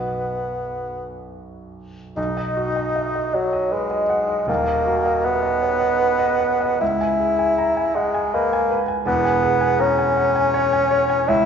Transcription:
Already playing: B1 B3 F#4 B4 D#5
2.17 B1 D#4
2.37 D#5
2.57 F#4
2.76 D#5
2.96 E5
3.15 D#5
3.34 F#3 C#5
3.53 D#5
3.72 G#3 B4
3.91 D#5
4.09 F#5
4.28 D#5
4.47 D#1 D#2 A#3
4.68 D#5
4.86 F#4
5.06 D#5
5.24 B3 E5
5.43 D#5
5.62 C#5
5.80 D#5
5.99 B4
6.19 D#5
6.40 F#5
6.61 D#5
6.81 C#2 E4
7.01 G#5
7.20 G#4
7.39 G#5
7.58 A#5
7.77 G#5
7.95 G#3 F#5
8.14 G#5
8.34 A#3 B4
8.53 G#5
8.71 B4
8.88 G#5
9.05 E1 E2 B3
9.25 G#5
9.43 G#4
9.61 G#5
9.79 C#4 A#5
9.98 G#5
10.16 F#5
10.36 G#5
10.54 C#5
10.73 G#5
10.91 C#5
11.09 G#5
11.28 C#2 E4

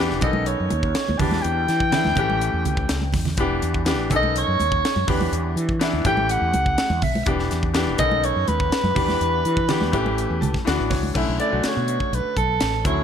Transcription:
Already playing: E2 E3 B3
0.00 D4 G4
0.10 E1, snare
0.21 B1 D#3 B3 C#4 A4 D#5, kick, closed hi-hat, low conga
0.33 high conga
0.46 C#5, closed hi-hat
0.60 F#2
0.71 D#2, closed hi-hat, high conga
0.83 kick
0.95 snare, closed hi-hat
1.08 D#2, high conga
1.18 E2 E3 B3 D4 G4 A5, kick, open hi-hat, low conga
1.31 snare, high conga
1.42 E2 G5, closed hi-hat
1.68 E3, snare, closed hi-hat
1.80 kick
1.91 E3 B3 D4 E4, snare, closed hi-hat, low conga
2.04 E2, snare, high conga
2.16 A1 E3 A3 C#4 G4, kick, closed hi-hat, low conga
2.30 high conga
2.41 closed hi-hat
2.53 E2
2.65 C#2, closed hi-hat, low conga
2.77 kick
2.89 C#2, snare, closed hi-hat
3.02 high conga
3.12 E2, kick, snare, open hi-hat, low conga
3.25 snare, low conga
3.37 E1 E3 B3 D4 G4, kick, closed hi-hat
3.62 E2, closed hi-hat
3.74 kick
3.85 E3 B3 D4 G4, snare, closed hi-hat
3.99 A1
4.10 B1 D#3 B3 C#4 A4, kick, closed hi-hat, low conga
4.16 D#5
4.23 high conga
4.36 C#5, closed hi-hat
4.48 F#2
4.59 D#2, closed hi-hat, high conga
4.72 kick
4.85 snare, closed hi-hat
4.96 F#2, high conga
5.07 E2 E3 B3 D4 G4 B4, kick, open hi-hat, low conga
5.21 high conga
5.32 E2, closed hi-hat
5.56 E3, closed hi-hat
5.69 kick
5.79 E3 B3 D4 E4, snare, closed hi-hat
5.93 E2
6.05 A1 E3 A3 C#4 G4 G5, kick, closed hi-hat, low conga
6.17 high conga
6.29 F#5, closed hi-hat
6.42 E2
6.54 C#2, closed hi-hat, high conga
6.66 kick
6.78 snare, closed hi-hat
6.90 E2, high conga
7.02 B1 E5, kick, open hi-hat, low conga
7.15 high conga
7.26 E1 E3 B3 D4 G4, kick, closed hi-hat
7.39 snare
7.51 E2, snare, closed hi-hat
7.63 kick
7.74 E3 B3 D4 G4, snare, closed hi-hat
7.88 E1
7.97 B1 D#3 B3 C#4 A4 D#5, kick, closed hi-hat, low conga
8.11 high conga
8.23 C#5, closed hi-hat
8.36 F#2
8.48 D#2 B4, closed hi-hat, high conga
8.60 kick
8.72 snare, closed hi-hat
8.83 F#2, high conga
8.95 E2 E3 B3 D4 G4, kick, open hi-hat, low conga
9.08 snare, high conga
9.21 E2, closed hi-hat
9.45 E3, closed hi-hat
9.57 kick
9.68 E3 B3 D4 G4, snare, closed hi-hat, low conga
9.81 E2, snare, high conga
9.92 A1 E3 A3 C#4 G4, kick, closed hi-hat
10.06 high conga
10.18 closed hi-hat
10.30 E2
10.41 C#2 A5, closed hi-hat, high conga, low conga
10.54 kick, snare
10.65 D2 E3 B3 D4 F#4 F#5, snare, closed hi-hat
10.80 A1
10.90 C#2 C#5, kick, snare, open hi-hat, low conga
11.03 high conga
11.14 B1 D3 A3 C#4 E4, kick, crash
11.28 B1
11.38 D3 A3 C#4 E4 D5, closed hi-hat
11.50 B1 D3 A3 C#4 F#4
11.64 C#5, snare, closed hi-hat
11.77 B2
11.88 closed hi-hat
12.00 kick
12.13 B1 B4, closed hi-hat
12.25 muted fretless electric bass stroke
12.37 B1 A4, kick, closed hi-hat
12.60 A1, snare, closed hi-hat
12.84 D2 D3 F#3 C#4 E4 C#5, kick, closed hi-hat

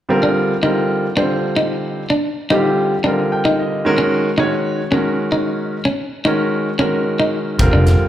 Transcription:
0.09 D3 G3 C4 F4 A#4
0.23 D4
0.62 D3 G3 C4 D#4 F4 A#4
1.16 D3 G3 C4 D4 F4 C5
1.56 D#4
2.10 D4
2.50 D3 G3 C4 D#4 F4 G4
3.04 D3 G3 C4 D4 F4 A#4
3.32 G5
3.45 D#4
3.59 D#5
3.85 D#3 G#3 C#4 F#4 A#4
3.98 C#4
4.38 D#3 G#3 C#4 D#4 F#4 C#5
4.91 D#3 G#3 C#4 F#4 A#4
5.32 D#4
5.85 C#4
6.25 D#3 G#3 C#4 D#4 F#4 A#4
6.78 D#3 G#3 C#4 F#4 A#4
7.20 D#4
7.58 F1 D3 G3 C4 F4 A#4, kick, closed hi-hat
7.73 F1 D4
7.87 snare, closed hi-hat
7.99 muted fretless electric bass stroke

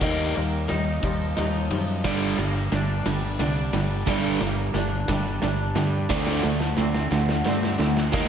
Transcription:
0.01 D#2 D#3 G3 A#3 D#5, kick, snare, ride
0.35 D#2 D#3 G3 A#3, ride
0.68 D#2 D#3 G3 D#4 D#5, snare, ride
1.03 D#2 D#3 F3 G3, kick, ride
1.37 D#2 D#3 G3 D#4 D#5, snare, ride
1.70 F#2 D#3 F3 G3, ride
2.04 G1 G2 D3 G3 D5, kick, snare, crash
2.38 G1 G2 D3 A#3, snare, ride
2.72 G1 G2 D3 D4 D5, snare, ride
3.06 G1 G2 D3 G3, snare, ride
3.39 C2 G2 D3 D4 D5, snare, ride
3.72 G1 G2 D3 G3, snare, ride
4.07 G1 G2 D3 G3 D5, kick, snare
4.41 G1 G2 D3 A#3, snare
4.74 G1 G2 D3 D4 D5, snare
5.08 G1 G2 D3 G3, kick, snare
5.42 G1 G2 D3 D4 D5, snare
5.75 G2 D3 G3, snare
6.09 D2 D3 A3 C4 D4 D5, kick, snare
6.27 snare
6.43 D2 D3 A3, snare
6.60 snare
6.77 D2 D3 A3 C4 D5, snare
6.94 snare
7.11 D2 D3 A3, snare
7.29 snare
7.45 G2 D3 A3 C4 D5, snare
7.63 snare
7.78 D2 D3 A3, snare
7.97 snare
8.12 D#2 D#3 G3 A#3 D#4 D#5, kick, snare

